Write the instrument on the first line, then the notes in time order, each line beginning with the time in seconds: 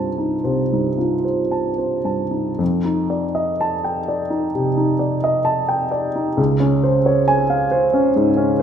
grand piano
Already playing: C2 G2 D#4 F4 C5 A5
0.18 D#4
0.44 C2 C5
0.73 G2 D#4
0.98 D#4 F4
1.25 C5
1.51 A5
1.78 C5
2.04 G2 A5
2.31 D#4
2.59 F2
2.84 D#4
3.10 D5
3.35 D#5
3.61 A5
3.84 G5
4.08 D5
4.30 D#4
4.55 C3
4.77 D#4
4.99 D5
5.24 D#5
5.45 A5
5.69 G5
5.91 D5
6.15 D#4
6.37 C#2
6.60 C#4
6.83 C5
7.06 C#5
7.28 G#5
7.50 F5
7.71 C5
7.94 C#4
8.16 G#2
8.37 C#4
8.59 C5